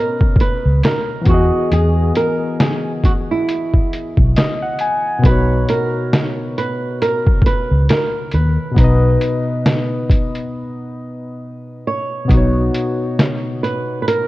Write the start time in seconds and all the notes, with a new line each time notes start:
Already playing: B2 B3 C#4 A#4 C#5 D#5
0.21 kick
0.36 kick
0.40 B4, closed hi-hat
0.65 C#2
0.83 A#4, snare, closed hi-hat
1.21 E3 B3
1.25 E2 F#4, kick, closed hi-hat
1.31 G#4 D#5
1.72 E2 G#4, closed hi-hat
2.15 A#4, closed hi-hat
2.60 G#4, snare, closed hi-hat
3.04 F#4, kick, closed hi-hat
3.31 E4
3.49 closed hi-hat
3.74 kick
3.93 closed hi-hat
4.17 B1, kick
4.36 D#5, snare, closed hi-hat
4.62 F#5
4.79 G#5, closed hi-hat
5.19 B2 B3
5.24 B1 D#4 B4, kick, closed hi-hat
5.28 F#4 C#5
5.69 A#4, closed hi-hat
6.13 snare, closed hi-hat
6.58 B4, closed hi-hat
7.02 A#4, closed hi-hat
7.27 kick
7.42 kick
7.46 B4, closed hi-hat
7.71 C#2
7.89 A#4, snare, closed hi-hat
8.31 D#2 B4, closed hi-hat
8.71 B2 B3
8.76 B1 D#4, kick, closed hi-hat
8.81 B4 D#5
9.21 closed hi-hat
9.66 snare, closed hi-hat
10.10 kick, closed hi-hat
10.35 closed hi-hat
11.87 C#5
12.25 B2 B3
12.29 B1 D#4, kick, closed hi-hat
12.34 F#4 C#5
12.74 closed hi-hat
13.19 snare, closed hi-hat
13.63 B4, closed hi-hat
14.02 B4
14.08 A#4, closed hi-hat